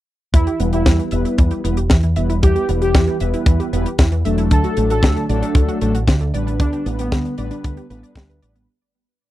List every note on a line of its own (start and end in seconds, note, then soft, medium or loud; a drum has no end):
0.34 0.45 E2 medium
0.34 0.46 E3 medium
0.34 0.60 E4 medium
0.34 kick loud
0.34 closed hi-hat medium
0.47 0.55 G4 medium
0.47 closed hi-hat soft
0.60 0.83 E1 loud
0.60 1.09 G3 medium
0.60 0.68 B3 medium
0.60 1.09 B3 medium
0.60 1.09 E4 medium
0.60 1.09 B4 medium
0.60 closed hi-hat medium
0.73 1.08 E4 medium
0.73 0.81 G4 medium
0.73 closed hi-hat medium
0.86 0.98 E2 medium
0.86 0.94 E3 loud
0.86 kick loud
0.86 snare loud
0.86 closed hi-hat medium
0.99 1.04 E3 medium
0.99 closed hi-hat soft
1.11 1.24 E1 medium
1.11 1.61 G3 medium
1.11 1.61 B3 medium
1.11 1.61 E4 medium
1.11 1.61 B4 loud
1.11 1.17 E5 medium
1.11 closed hi-hat medium
1.25 1.33 E4 medium
1.25 closed hi-hat medium
1.38 1.50 E2 loud
1.38 1.50 E3 medium
1.38 kick loud
1.38 closed hi-hat medium
1.51 1.59 G4 medium
1.51 closed hi-hat soft
1.64 1.87 E1 medium
1.64 1.78 G3 medium
1.64 1.78 B3 medium
1.64 1.72 B3 medium
1.64 1.78 E4 medium
1.64 1.78 B4 loud
1.64 closed hi-hat medium
1.77 1.85 G4 medium
1.77 closed hi-hat medium
1.90 2.14 E2 medium
1.90 1.98 E3 loud
1.90 kick loud
1.90 snare loud
1.90 closed hi-hat medium
2.03 2.08 E3 medium
2.03 closed hi-hat soft
2.16 2.40 E1 medium
2.16 2.65 G3 medium
2.16 2.65 B3 medium
2.16 2.65 E4 medium
2.16 2.65 B4 medium
2.16 2.21 E5 medium
2.16 closed hi-hat loud
2.30 2.37 E4 medium
2.30 closed hi-hat medium
2.42 2.54 E2 medium
2.42 2.54 E3 medium
2.42 2.69 G4 loud
2.42 kick loud
2.42 closed hi-hat medium
2.56 2.63 G4 medium
2.56 closed hi-hat soft
2.69 2.92 E1 loud
2.69 3.18 G3 medium
2.69 3.18 B3 medium
2.69 2.76 B3 medium
2.69 3.18 E4 medium
2.69 3.18 B4 medium
2.69 closed hi-hat medium
2.82 2.89 G4 medium
2.82 3.17 G4 medium
2.82 closed hi-hat medium
2.95 3.06 E2 medium
2.95 3.02 E3 loud
2.95 kick loud
2.95 snare loud
2.95 closed hi-hat medium
3.07 3.12 E3 medium
3.07 closed hi-hat soft
3.20 3.32 E1 medium
3.20 3.70 G3 medium
3.20 3.70 B3 medium
3.20 3.70 E4 medium
3.20 3.70 B4 loud
3.20 3.25 E5 medium
3.20 closed hi-hat medium
3.34 3.42 E4 medium
3.34 closed hi-hat medium
3.46 3.58 E2 medium
3.46 3.59 E3 medium
3.46 kick loud
3.46 closed hi-hat medium
3.60 3.68 G4 medium
3.60 closed hi-hat soft
3.73 3.85 E1 loud
3.73 3.87 G3 medium
3.73 3.81 B3 medium
3.73 3.87 B3 medium
3.73 3.87 E4 medium
3.73 3.87 B4 loud
3.73 closed hi-hat loud
3.86 3.94 G4 medium
3.86 closed hi-hat medium
3.98 4.22 E2 loud
3.98 4.07 E3 loud
3.98 kick loud
3.98 snare loud
3.98 closed hi-hat medium
4.12 4.17 E3 medium
4.12 closed hi-hat soft
4.25 4.48 E1 medium
4.25 4.74 F#3 medium
4.25 4.74 A3 medium
4.25 4.74 D4 medium
4.25 4.74 A4 medium
4.25 4.30 E5 medium
4.25 closed hi-hat loud
4.38 4.46 E4 medium
4.38 closed hi-hat medium
4.51 4.63 D2 loud
4.51 4.63 D3 medium
4.51 4.78 A4 loud
4.51 kick loud
4.51 closed hi-hat medium
4.64 4.72 F#4 medium
4.64 closed hi-hat soft
4.77 5.01 A1 loud
4.77 5.26 F#3 medium
4.77 4.85 A3 medium
4.77 5.26 A3 medium
4.77 5.26 D4 medium
4.77 5.26 A4 medium
4.77 closed hi-hat loud
4.90 4.98 F#4 medium
4.90 5.25 A4 medium
4.90 closed hi-hat medium
5.03 5.15 D2 medium
5.03 5.11 D3 loud
5.03 kick loud
5.03 snare loud
5.03 closed hi-hat medium
5.16 5.21 D3 medium
5.16 closed hi-hat soft
5.29 5.41 A1 medium
5.29 5.79 F#3 medium
5.29 5.79 A3 medium
5.29 5.79 D4 medium
5.29 5.79 A4 loud
5.29 5.34 D5 medium
5.29 closed hi-hat medium
5.42 5.50 D4 medium
5.42 closed hi-hat medium
5.55 5.67 D2 loud
5.55 5.67 D3 medium
5.55 kick loud
5.55 closed hi-hat medium
5.69 5.76 F#4 medium
5.69 closed hi-hat soft
5.81 6.05 A1 medium
5.81 5.96 F#3 medium
5.81 5.89 A3 medium
5.81 5.96 A3 medium
5.81 5.96 D4 medium
5.81 5.96 A4 loud
5.81 closed hi-hat medium
5.95 6.03 F#4 medium
5.95 closed hi-hat medium
6.08 6.31 D2 medium
6.08 6.16 D3 loud
6.08 kick loud
6.08 snare loud
6.08 closed hi-hat medium
6.21 6.25 D3 medium
6.21 closed hi-hat soft
6.34 6.57 A1 medium
6.34 6.83 G3 medium
6.34 6.83 B3 medium
6.34 6.83 D4 medium
6.34 6.83 B4 medium
6.34 6.39 D5 medium
6.34 closed hi-hat medium
6.47 6.55 D4 medium
6.47 closed hi-hat medium
6.60 6.71 D2 loud
6.60 6.72 D3 medium
6.60 6.86 D4 loud
6.60 kick loud
6.60 closed hi-hat medium
6.73 6.81 G4 medium
6.73 closed hi-hat soft
6.86 7.09 A1 loud
6.86 7.35 G3 medium
6.86 6.94 B3 medium
6.86 7.35 B3 medium
6.86 7.35 D4 medium
6.86 7.35 B4 medium
6.86 closed hi-hat medium
6.99 7.34 B3 loud
6.99 7.07 G4 medium
6.99 closed hi-hat medium
7.12 7.24 D2 medium
7.12 7.20 D3 loud
7.12 kick loud
7.12 snare loud
7.12 closed hi-hat medium
7.25 7.30 D3 medium
7.25 closed hi-hat soft
7.38 7.50 A1 medium
7.38 7.87 G3 medium
7.38 7.87 B3 medium
7.38 7.87 D4 medium
7.38 7.87 B4 loud
7.38 7.43 D5 medium
7.38 closed hi-hat medium
7.51 7.59 D4 medium
7.51 closed hi-hat medium
7.64 7.76 D2 medium
7.64 7.76 D3 medium
7.64 kick loud
7.64 closed hi-hat medium
7.77 7.85 G4 medium
7.77 closed hi-hat soft
7.90 8.02 A1 loud
7.90 8.39 G3 medium
7.90 8.39 B3 medium
7.90 8.39 D4 medium
7.90 7.95 B4 medium
7.90 8.39 B4 loud
7.90 closed hi-hat medium
8.03 8.08 D5 medium
8.03 closed hi-hat medium
8.15 8.39 D2 loud
8.15 8.28 G3 medium
8.15 kick loud
8.15 snare loud
8.15 closed hi-hat medium
8.30 8.34 B4 medium
8.30 closed hi-hat soft
8.42 8.66 A1 medium
8.42 8.67 G3 medium
8.42 8.67 B3 medium
8.42 8.67 D4 medium
8.42 8.67 B4 medium
8.42 8.54 D5 medium
8.42 closed hi-hat medium
8.56 8.63 B3 medium
8.56 closed hi-hat medium